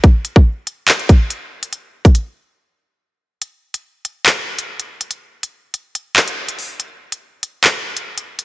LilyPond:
\new DrumStaff \with { instrumentName = "Drums" } \drummode { \time 4/4 \tempo 4 = 142 <hh bd>8 hh16 bd16 r8 hh8 <hc hh>16 hh16 <hh bd>8 hh8. hh16 | hh8. <hh bd>16 hh4 r4 r4 | hh8. hh16 r8 hh8 <hc hh>8. hh16 r16 hh8 hh16 | hh8. hh16 r8 hh8 hh8 hc16 hh16 r16 hh16 hho8 |
hh8. hh16 r8 hh8 <hc hh>8. hh16 r16 hh8 hh16 | }